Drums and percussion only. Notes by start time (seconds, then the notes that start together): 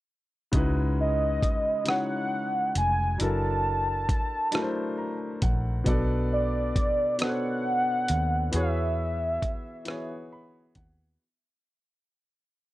0.53 kick, closed hi-hat
1.43 kick, closed hi-hat
1.86 cross-stick, closed hi-hat
2.75 closed hi-hat
3.20 closed hi-hat
4.09 kick, closed hi-hat
4.52 cross-stick, closed hi-hat
5.42 kick, closed hi-hat
5.86 kick, closed hi-hat
6.76 kick, closed hi-hat
7.19 cross-stick, closed hi-hat
8.08 closed hi-hat
8.53 closed hi-hat
9.42 kick, closed hi-hat
9.85 cross-stick, closed hi-hat
10.75 kick, closed hi-hat